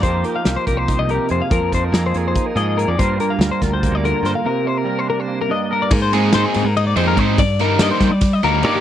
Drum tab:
CC |-------|-------|-------|-------|
RD |-------|-------|-------|-------|
HH |xxxxxxx|xxxxxxx|xxxxxxx|-------|
SD |--o----|--o----|--oo--o|-------|
BD |o--oo--|oo--o--|o--oo--|-------|

CC |x------|-------|
RD |-xxxxxx|xxxxxxx|
HH |-------|-------|
SD |-ooo---|-ooooo-|
BD |o-----o|o--oo--|